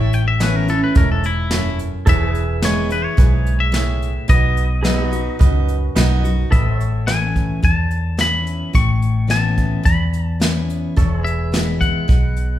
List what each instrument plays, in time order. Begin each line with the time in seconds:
Already playing: fingered electric bass A1, steel-string acoustic guitar A2, grand piano E4 A4 C#5, pedal steel guitar A4 C#5 E5
0.00 clean electric guitar E5
0.13 clean electric guitar G5, closed hi-hat
0.28 clean electric guitar E5
0.40 steel-string acoustic guitar E3 B3 C#4 E4, grand piano E4 A4 C#5, clean electric guitar B4, snare, closed hi-hat
0.56 clean electric guitar A#4
0.68 steel-string acoustic guitar C#4 E4, clean electric guitar A4, closed hi-hat
0.84 clean electric guitar B4
0.95 fingered electric bass E1, steel-string acoustic guitar G#2, grand piano E4 A4 C#5, clean electric guitar A#4, kick, closed hi-hat
1.12 clean electric guitar A4
1.23 clean electric guitar E4, closed hi-hat
1.51 steel-string acoustic guitar F#2, grand piano E4 A4 C#5, snare, closed hi-hat
1.79 closed hi-hat
2.06 fingered electric bass E1, steel-string acoustic guitar E2, grand piano E4 G#4 B4, pedal steel guitar A4 C#5 E5, clean electric guitar E5, kick, closed hi-hat
2.26 pedal steel guitar G#4
2.33 pedal steel guitar B4, closed hi-hat
2.62 steel-string acoustic guitar E3 G#3 B3 E4, grand piano E4 G#4 C#5, clean electric guitar C#5, snare, closed hi-hat
2.89 steel-string acoustic guitar B3 E4, clean electric guitar B4, closed hi-hat
3.05 clean electric guitar C#5
3.17 fingered electric bass B1, steel-string acoustic guitar G#2, grand piano E4 G#4 B4, kick, closed hi-hat
3.46 closed hi-hat
3.60 clean electric guitar E5
3.72 steel-string acoustic guitar A2, grand piano E4 G#4 C#5, snare, closed hi-hat
4.02 closed hi-hat
4.28 fingered electric bass B1, steel-string acoustic guitar B2, grand piano D#4 F#4 B4, clean electric guitar D#5, kick, closed hi-hat
4.57 closed hi-hat
4.83 steel-string acoustic guitar F#3 B3 D#4 F#4, grand piano D#4 F#4 B4, pedal steel guitar G#4 B4 E5, snare, closed hi-hat
5.04 pedal steel guitar F#4 D#5
5.11 steel-string acoustic guitar D#4 F#4, closed hi-hat
5.39 fingered electric bass C#2, steel-string acoustic guitar F#2, grand piano D#4 F#4 B4, kick, closed hi-hat
5.68 closed hi-hat
5.95 fingered electric bass B1, steel-string acoustic guitar F#3 B3 D#4 F#4, grand piano D#4 F#4 B4, snare, closed hi-hat
6.24 steel-string acoustic guitar D#4 F#4, closed hi-hat
6.51 fingered electric bass A1, steel-string acoustic guitar A2, pedal steel guitar A4 B4 D#5, clean electric guitar E5, kick, closed hi-hat
6.73 pedal steel guitar C#5 E5
6.80 closed hi-hat
7.07 steel-string acoustic guitar E3 B3 C#4 E4, clean electric guitar G#5, snare, closed hi-hat
7.36 kick, closed hi-hat
7.62 steel-string acoustic guitar E2, fingered electric bass E2, clean electric guitar A5, kick, closed hi-hat
7.91 closed hi-hat
8.17 steel-string acoustic guitar E3 B3 C#4 E4, clean electric guitar B5, snare, closed hi-hat
8.47 closed hi-hat
8.73 fingered electric bass A1, steel-string acoustic guitar A2, clean electric guitar C#6, kick, closed hi-hat
9.02 closed hi-hat
9.27 steel-string acoustic guitar E3 B3 C#4 E4, clean electric guitar A5, snare, closed hi-hat
9.57 kick, closed hi-hat
9.83 steel-string acoustic guitar E2, fingered electric bass E2, clean electric guitar B5, kick, closed hi-hat
10.13 closed hi-hat
10.40 steel-string acoustic guitar E3 B3 C#4 E4, snare, closed hi-hat
10.70 closed hi-hat
10.96 fingered electric bass E1, steel-string acoustic guitar E2, pedal steel guitar A4 C#5 E5, kick, closed hi-hat
11.17 pedal steel guitar G#4
11.23 pedal steel guitar B4, clean electric guitar E5, closed hi-hat
11.52 steel-string acoustic guitar E3 G#3 B3 E4, snare, closed hi-hat
11.81 clean electric guitar F#5, kick, closed hi-hat
12.08 fingered electric bass B1, steel-string acoustic guitar B2, kick, closed hi-hat
12.36 closed hi-hat